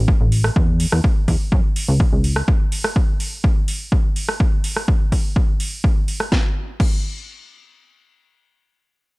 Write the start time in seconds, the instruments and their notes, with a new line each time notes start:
Already playing: analog synth bass A1
0.08 kick
0.21 analog synth bass A1
0.32 open hi-hat
0.44 cross-stick
0.56 analog synth bass E2, kick
0.80 open hi-hat
0.92 analog synth bass E2, cross-stick
1.04 kick
1.28 analog synth bass E2, kick, open hi-hat
1.52 analog synth bass F#2, kick
1.76 open hi-hat
1.88 analog synth bass C#2
2.00 kick
2.13 analog synth bass C#2
2.24 open hi-hat
2.36 cross-stick
2.48 kick
2.72 open hi-hat
2.84 cross-stick
2.96 kick
3.20 open hi-hat
3.44 kick
3.68 open hi-hat
3.92 kick
4.16 open hi-hat
4.29 cross-stick
4.40 kick
4.64 open hi-hat
4.76 cross-stick
4.88 kick
5.12 kick, open hi-hat
5.36 kick
5.60 open hi-hat
5.84 kick
6.08 open hi-hat
6.20 cross-stick
6.32 kick, snare
6.80 kick, crash